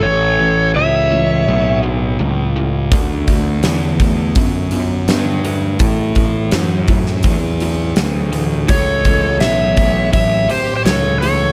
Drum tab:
HH |----------------|o-o-o-o-o-o-o-o-|o-o-o-o-o-o-o-o-|o-o-o-o-o-o-o-o-|
SD |----------------|----o-------o---|----o--o----o---|----o-------o---|
BD |----------------|o-o---o-o-------|o-o---o-o-------|o-o---o-o-------|